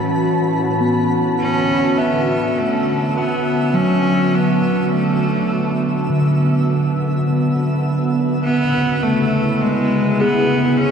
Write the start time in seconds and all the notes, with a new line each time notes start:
Already playing: A2 E3 F#3 C#4 F#4 B4 A5 B5
0.81 B3
1.39 D3 C#4 E5 E6
1.98 B3 E5
2.35 B3
2.58 A3
3.17 B3
3.74 F#3 C#4
4.35 B3
4.93 A3
6.10 D3
8.43 C#3 B3
9.03 A3 E4
9.61 G#3
9.78 G#4
10.20 B3 G#4
10.77 C#4